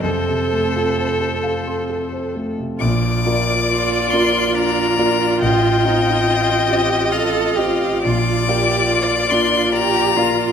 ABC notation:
X:1
M:3/4
L:1/16
Q:1/4=69
K:Bb
V:1 name="Violin"
c8- c2 z2 | d'6 c'2 b4 | g8 f4 | d'6 c'2 b4 |]
V:2 name="Violin"
A12 | d12 | e12 | d12 |]
V:3 name="Cello"
C,8- C,2 z2 | z4 F4 D2 D2 | F2 E2 F2 G2 A2 G2 | F2 G2 F2 D2 G2 F2 |]
V:4 name="Grand piano"
F,, C, A, F c A f c' A c A, C, | B,,,2 [B,Fd]4 [B,Fd]4 [B,Fd]2 | A,,,2 [CFe]4 [CFe]4 [CFe]2 | B,,,2 [B,Fd]4 [B,Fd]4 [B,Fd]2 |]
V:5 name="Viola"
A8- A2 z2 | F12- | F12 | F12 |]